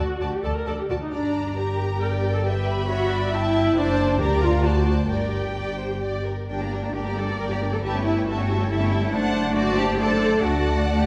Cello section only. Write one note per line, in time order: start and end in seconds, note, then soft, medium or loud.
0.22 0.30 D2 soft
0.45 0.53 D2 soft
0.68 0.76 D2 soft
0.90 0.98 D2 soft
1.12 3.72 G2 soft
3.76 4.17 F#2 medium
4.20 5.09 D2 medium
5.08 6.25 G2 soft
6.49 6.91 D4 medium
6.93 7.16 G4 medium
7.16 7.39 A4 medium
7.39 7.43 A#4 medium
7.50 7.58 G4 medium
7.72 7.76 A4 medium
7.83 8.04 G4 medium
8.04 8.26 E4 medium
8.27 8.69 F#4 medium
8.69 9.12 E4 medium
9.12 9.55 D4 medium
9.56 9.77 F#4 medium
9.77 9.99 G4 medium
9.99 10.44 A4 medium
10.44 11.01 F#4 medium
11.00 11.06 G4 medium